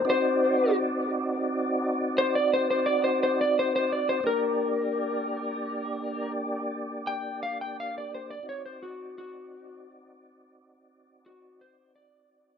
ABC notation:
X:1
M:12/8
L:1/16
Q:3/8=57
K:Dphr
V:1 name="Electric slide guitar"
c4 z8 c d c c d c c d c c d c | B12 z4 g2 f g f d c d | ^c =c ^F2 F4 z8 F2 c2 d4 |]
V:2 name="Tonewheel organ"
[CE^Fd]24 | [B,DGd]24 | [CE^Fd]24 |]